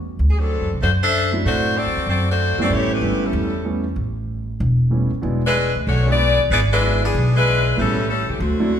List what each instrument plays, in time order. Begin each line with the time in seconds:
Already playing: upright bass E2
0.19 upright bass D2
0.31 saxophone section G#4
0.39 saxophone section F#3 C4 D4 A4
0.61 upright bass F#2
0.73 upright bass C2
0.81 upright bass F#2, saxophone section A3 D4 F#4 C5
1.03 saxophone section D4 A4 C5 E5
1.32 grand piano F#3 A3 C4 D4 E4
1.45 upright bass A2, saxophone section A3 D4 F#4 C5
1.77 saxophone section C4 F#4 A4 D5
1.86 upright bass F#2
1.97 upright bass E2
2.07 upright bass F#2, saxophone section C4 F#4 A4 D5
2.31 saxophone section A3 D4 F#4 C5
2.58 grand piano G3 A3 B3 C#4 E4, muted upright bass stroke
2.62 saxophone section C4 F#4 A4 D5
2.70 upright bass A1, saxophone section A3 E4 G4 C#5
2.92 saxophone section A3 E4 G4 B4
3.01 upright bass G1, grand piano G3 A3 B3 C#4 E4
3.25 saxophone section G3 C#4 E4 A4
3.33 upright bass E2
3.65 grand piano G3 A3 B3 C#4 E4
3.96 upright bass A1
4.60 upright bass E1
4.90 grand piano G3 A3 B3 C#4 E4
5.13 muted upright bass stroke
5.21 upright bass E1, grand piano F#3 G#3 B3 D4 E4
5.46 saxophone section G#3 D4 E4 B4
5.75 upright bass D2
5.87 upright bass B1, saxophone section A3 D4 F#4 C#5
6.06 grand piano F#3 G#3 B3 D4 F#4, saxophone section B3 E4 G#4
6.10 saxophone section D5
6.39 upright bass B2
6.50 upright bass G#1, saxophone section B3 E4 G#4 D5
6.72 saxophone section G#3 D4 E4 B4
6.81 grand piano F#3 G#3 B3 D4 E4
7.04 saxophone section E3 B3 D4 G#4
7.14 upright bass B1
7.36 saxophone section G#3 D4 E4 B4
7.77 upright bass A1, grand piano G3 A3 B3 C#4 E4, saxophone section G3 C#4 E4 A4
8.09 saxophone section G3 C#4 E4 A4
8.28 upright bass C#2, saxophone section E3 A3 C#4 G4
8.40 upright bass D2, saxophone section D3 A3 C4 F#4
8.60 grand piano F#3 A3 C4 D4 E4